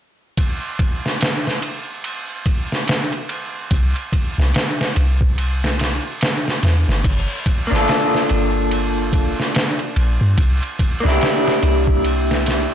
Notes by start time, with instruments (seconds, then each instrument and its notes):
0.37 kick, ride
0.79 kick, ride
1.06 snare
1.21 snare, ride
1.47 snare
1.62 ride
2.04 ride
2.46 kick, ride
2.72 snare
2.88 snare, ride
3.13 ride
3.29 ride
3.71 808-style bass C2, kick, ride
3.96 ride
4.13 kick, ride
4.38 808-style bass C2, snare
4.54 snare, ride
4.81 snare
4.96 808-style bass C2, ride
5.21 kick
5.38 ride
5.64 snare
5.79 snare, ride
6.21 snare, ride
6.48 snare
6.63 808-style bass E2, snare, ride
6.88 808-style bass G1, snare
7.04 808-style bass G1, kick, crash, ride
7.46 kick, ride
7.67 clean electric guitar A#3 D4
7.72 808-style bass G1, clean electric guitar F4, snare
7.76 clean electric guitar A4
7.88 snare, ride
8.14 snare
8.29 808-style bass G1, ride
8.71 ride
9.13 kick, ride
9.40 snare
9.55 snare, ride
9.79 ride
9.96 808-style bass A#1, ride
10.21 808-style bass G2
10.38 808-style bass C2, kick, ride
10.63 ride
10.79 kick, ride
11.00 clean electric guitar A#3 D4
11.05 808-style bass C2, clean electric guitar E4, snare
11.09 clean electric guitar G4
11.21 snare, ride
11.48 snare
11.63 808-style bass C2, ride
11.87 kick
12.04 ride
12.31 snare
12.46 snare, ride